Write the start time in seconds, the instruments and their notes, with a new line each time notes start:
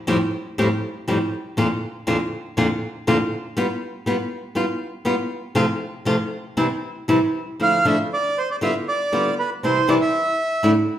0.07 nylon-string guitar F2 A2 F3 G3 C4 G4
0.58 nylon-string guitar F2 A2 F3 G3 C4 G4
1.08 nylon-string guitar F2 A2 F3 G3 C4 G4
1.57 nylon-string guitar F2 A#2 D3 C4 F4
2.07 nylon-string guitar F2 A#2 D3 C4 F4
2.57 nylon-string guitar F2 A#2 D3 C4 F4
3.07 nylon-string guitar F2 A#2 D3 C4 F4
3.57 nylon-string guitar G3 B3 F4
4.06 nylon-string guitar G3 B3 F4
4.55 nylon-string guitar G3 B3 F4
5.05 nylon-string guitar G3 B3 F4
5.55 nylon-string guitar C3 F3 A3 C4 F4
6.05 nylon-string guitar C3 F3 A3 C4 F4
6.57 nylon-string guitar C3 E3 G3 C4 E4
7.08 nylon-string guitar C3 E3 G3 C4 E4
7.60 nylon-string guitar D3 F3 A3 D4 E4, bandoneon F5
7.85 nylon-string guitar D3 F3 A3 D4 E4, bandoneon E5
8.13 bandoneon D5
8.38 bandoneon C5
8.51 bandoneon D5
8.61 nylon-string guitar D3 G3 B3 F4, bandoneon E5
8.88 bandoneon D5
9.12 nylon-string guitar D3 G3 B3 F4
9.39 bandoneon B4
9.63 nylon-string guitar C3 E3 G3 C4 E4, bandoneon C5
9.88 nylon-string guitar C3 E3 G3 C4 E4, bandoneon D5
10.01 bandoneon E5
10.63 nylon-string guitar A2 D3 A3 D4 E4